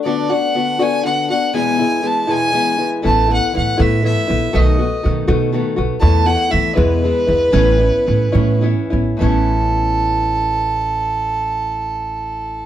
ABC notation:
X:1
M:6/8
L:1/8
Q:3/8=80
K:A
V:1 name="Violin"
d f2 g f f | g2 a g2 z | a f f e e2 | ^d2 z4 |
a f e B3- | B4 z2 | A6- | A6 |]
V:2 name="Nylon-string guitar"
[D,B,DF] [B,DF] [D,B,DF] [D,B,DF] [D,B,DF] [B,DF] | [E,,B,,E,G,B,E] [E,G,B,E] [E,G,B,E] [E,,B,,E,G,B,E] [E,G,B,E] [E,G,B,E] | [A,,E,A,B,E] [A,B,E] [E,A,B,E] [A,,E,A,B,E] [E,A,B,E] [A,B,E] | [B,,^D,A,B,F] [A,B,F] [D,A,B,F] [B,,D,A,B,F] [D,A,B,F] [A,B,F] |
[E,,B,,E,A,B,E] [E,A,B,E] [E,A,B,E] [E,,B,,E,G,B,E] [E,G,B,E] [E,G,B,E] | [A,,E,B,CE] [B,CE] [E,B,CE] [A,,E,B,CE] [E,B,CE] [B,CE] | [A,,E,B,CE]6- | [A,,E,B,CE]6 |]
V:3 name="Upright bass" clef=bass
z6 | z6 | A,,,2 A,, A,,2 _B,,, | B,,,2 B,, B,,2 B,,, |
E,,2 E, E,,2 E,, | A,,,2 A,, A,,2 A,,, | A,,,6- | A,,,6 |]